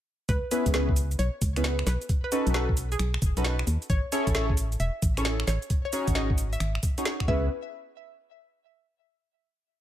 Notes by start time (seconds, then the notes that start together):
0.29 C#2 B4, kick, closed hi-hat, cabasa
0.51 B3 C#4 E4 G#4 B4, open hi-hat, cabasa
0.66 C#2, kick, closed hi-hat, cabasa
0.74 B3 C#4 E4 G#4 B4, snare, cabasa
0.89 kick
0.96 open hi-hat, cabasa
1.11 closed hi-hat, cabasa
1.19 B1 C#5, closed hi-hat, cabasa
1.42 C#2, kick, open hi-hat, cabasa
1.56 B3 C#4 E4 G#4 B4, finger snap, closed hi-hat, cabasa
1.64 snare, closed hi-hat, cabasa
1.79 finger snap
1.87 B1 B4, snare, open hi-hat, cabasa
2.02 closed hi-hat, cabasa
2.09 kick, closed hi-hat, cabasa
2.24 B4
2.32 C#4 D#4 F#4 A4 B4, open hi-hat, cabasa
2.47 B1, closed hi-hat, cabasa
2.54 C#4 D#4 F#4 A4 B4, snare, cabasa
2.69 kick
2.77 open hi-hat, cabasa
2.92 G#4, closed hi-hat, cabasa
2.99 B1, finger snap, closed hi-hat, cabasa
3.14 finger snap
3.22 F#1, kick, open hi-hat, cabasa
3.37 B1 C#4 D#4 F#4 A4 B4, closed hi-hat, cabasa
3.45 snare, closed hi-hat, cabasa
3.59 finger snap
3.67 D#2, open hi-hat, cabasa
3.82 closed hi-hat, cabasa
3.90 A1 C#5, kick, closed hi-hat, cabasa
4.12 C#4 E4 G#4 A4 C#5, open hi-hat, cabasa
4.27 A1, kick, closed hi-hat, cabasa
4.35 C#4 E4 G#4 A4 C#5, snare, cabasa
4.50 kick
4.57 open hi-hat, cabasa
4.72 closed hi-hat, cabasa
4.80 E1 E5, closed hi-hat, cabasa
5.02 A1, kick, open hi-hat, cabasa
5.17 C#4 E4 G#4 A4 C#5, finger snap, closed hi-hat, cabasa
5.25 snare, closed hi-hat, cabasa
5.40 finger snap
5.47 A1 C#5, snare, open hi-hat, cabasa
5.62 closed hi-hat, cabasa
5.70 kick, closed hi-hat, cabasa
5.85 C#5
5.93 C#4 D#4 F#4 G#4 C#5, open hi-hat, cabasa
6.07 G#1, kick, closed hi-hat, cabasa
6.15 C#4 D#4 F#4 G#4 C#5 D#5, snare, cabasa
6.30 kick
6.38 open hi-hat, cabasa
6.53 E5, closed hi-hat, cabasa
6.60 G#1, finger snap, closed hi-hat, cabasa
6.75 finger snap
6.83 kick, open hi-hat, cabasa
6.98 C#4 D#4 F#4 G#4 C#5, closed hi-hat, cabasa
7.05 snare, closed hi-hat, cabasa
7.20 finger snap, kick
7.28 C#2 B3 C#4 E4 G#4 B4 E5, kick